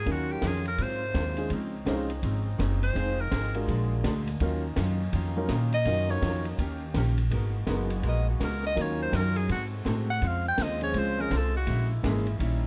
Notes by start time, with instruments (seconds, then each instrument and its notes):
Already playing: alto saxophone G#4
0.05 upright bass D#2, trombone section C#3 D#3 C#4 F4, hollow-body jazz guitar D#3 F#3 C#4 F4, grand piano F#3 C#4 D#4 F4 A#4, kick, ride
0.12 alto saxophone F#4
0.32 alto saxophone G4
0.42 upright bass F2, hollow-body jazz guitar D#3 F#3 C#4 F4, kick, snare, hi-hat pedal, ride
0.47 alto saxophone G#4
0.65 alto saxophone A#4, ride
0.77 hollow-body jazz guitar G#2 F#3 C4, upright bass G#2, trombone section C3 A#3, kick, ride
0.82 hollow-body jazz guitar F4, alto saxophone C5
1.14 upright bass D#2, hollow-body jazz guitar G#2 F#3 C4 F4, kick, snare, hi-hat pedal, ride
1.37 grand piano G#3 C#4 D#4 F4 G#4, ride
1.50 upright bass C#2, hollow-body jazz guitar C#3 F3 C4 D#4, trombone section F3 C4 C#4 D#4, kick, ride
1.86 upright bass C2, hollow-body jazz guitar C#3 F3 C4 D#4, grand piano G#3 C#4 D#4 F4 C5, kick, snare, hi-hat pedal, ride
2.10 ride
2.23 upright bass G#1, hollow-body jazz guitar C#3 F3 C4 D#4, kick, ride
2.58 upright bass F#1, hollow-body jazz guitar C#3 F3 C4 D#4, kick, snare, hi-hat pedal, ride
2.83 alto saxophone C5, ride
2.93 upright bass F1, trombone section D#3 G#3 F4, hollow-body jazz guitar F3 C4 D#4 G#4, grand piano G#3 C4 D#4 F4 C5, kick, ride
3.21 alto saxophone A#4
3.31 upright bass G#1, hollow-body jazz guitar F3 C4 D#4 G#4, kick, snare, hi-hat pedal, ride
3.54 grand piano G#3 D4 F4 F#4 A#4, ride
3.67 upright bass A#1, hollow-body jazz guitar A#2 G#3 D4 F#4, trombone section D3 A#3, kick, ride
4.04 upright bass D2, hollow-body jazz guitar A#2 G#3 D4 F#4, kick, snare, hi-hat pedal, ride
4.27 ride
4.39 upright bass D#2, trombone section D#3 A#3 C#4 D#4, hollow-body jazz guitar D#3 F#3, grand piano F#3 C#4 D#4 F4 A#4, kick, ride
4.43 hollow-body jazz guitar C#4 F4
4.76 upright bass F#2, hollow-body jazz guitar D#3 F#3 C#4 F4, kick, snare, hi-hat pedal, ride
5.12 upright bass F2, hollow-body jazz guitar D#3 F#3 C#4 F4, kick, ride
5.36 grand piano F#3 C#4 D#4 F4 A#4
5.48 upright bass A#2, hollow-body jazz guitar D#3 F#3 C#4 F4, kick, snare, hi-hat pedal, ride
5.72 alto saxophone D#5, ride
5.85 upright bass F#2, hollow-body jazz guitar D#3 F#3 C#4 F4, grand piano C#4 D#4 F4 F#4 A#4, kick, ride
6.09 alto saxophone C#5, snare
6.22 upright bass F2, hollow-body jazz guitar D#3 F#3 C#4 F4, kick, snare, hi-hat pedal, ride
6.45 ride
6.57 upright bass D#2, hollow-body jazz guitar D#3 A#3, trombone section A#3 G4, kick, ride
6.61 hollow-body jazz guitar C#4 G4
6.94 upright bass A#1, hollow-body jazz guitar D#3 A#3 C#4, kick, snare, hi-hat pedal, ride
6.99 hollow-body jazz guitar G4
7.18 ride
7.30 upright bass G#1, hollow-body jazz guitar G#3 B3 F#4 A#4, trombone section G#3 A#3 B3 F#4, kick, ride
7.67 upright bass F#1, grand piano G#3 B3 D#4 F#4 A#4, hollow-body jazz guitar G#3 B3 F#4 A#4, kick, snare, hi-hat pedal, ride
7.90 ride
8.03 upright bass A#1, hollow-body jazz guitar G#3 B3 F#4 A#4, kick, ride
8.09 alto saxophone D#5
8.30 alto saxophone F#4
8.40 upright bass C#2, hollow-body jazz guitar G#3 B3 F#4 A#4, kick, snare, hi-hat pedal, ride
8.45 alto saxophone A#4
8.63 alto saxophone D#5, snare
8.75 upright bass D#2, hollow-body jazz guitar D#3 F#3 C#4, trombone section D#3 F#3 C#4 F4, grand piano F#3 C#4 D#4 F4 A#4, kick, ride
8.80 hollow-body jazz guitar F4, alto saxophone C#5
9.03 alto saxophone C5
9.12 upright bass F#2, hollow-body jazz guitar D#3 F#3 C#4 F4, kick, snare, hi-hat pedal, ride
9.16 alto saxophone A#4
9.36 alto saxophone G#4, ride
9.48 upright bass G#2, trombone section C3 G#3 A3 F#4, hollow-body jazz guitar G#3 C4 F#4 A4, alto saxophone F#4, kick, ride
9.85 upright bass A2, hollow-body jazz guitar G#3 C4 F#4 A4, kick, snare, hi-hat pedal, ride
10.10 alto saxophone F#5
10.21 upright bass F2, hollow-body jazz guitar C#3 G#3 C4 F4, trombone section G#3 F4 C5, kick, ride
10.27 alto saxophone F5
10.49 alto saxophone G5
10.58 upright bass D#2, hollow-body jazz guitar C#3 G#3 C4 F4, kick, snare, hi-hat pedal, ride
10.63 alto saxophone D#5
10.81 grand piano F3 G#3 C4 C#4 G#4, alto saxophone C#5, ride
10.93 upright bass C#2, hollow-body jazz guitar C#3 G#3 C4 F4, kick, ride
10.99 alto saxophone C5
11.18 grand piano F3 G#3 C4 C#4 G#4, alto saxophone A#4
11.31 upright bass C2, hollow-body jazz guitar C#3 G#3 C4 F4, kick, snare, hi-hat pedal, ride
11.36 alto saxophone A4
11.57 alto saxophone F#4
11.66 upright bass A#1, hollow-body jazz guitar A#2 G#3 C#4 E4, trombone section A#3 E4, kick, ride
12.03 upright bass G#1, hollow-body jazz guitar A#2 G#3 C#4 E4, grand piano E3 G#3 A#3 C#4 G#4, kick, snare, hi-hat pedal, ride
12.27 ride
12.38 upright bass A#1, trombone section D#3 G3 C#4 E4, hollow-body jazz guitar D#3 G3 C#4 E4, kick, ride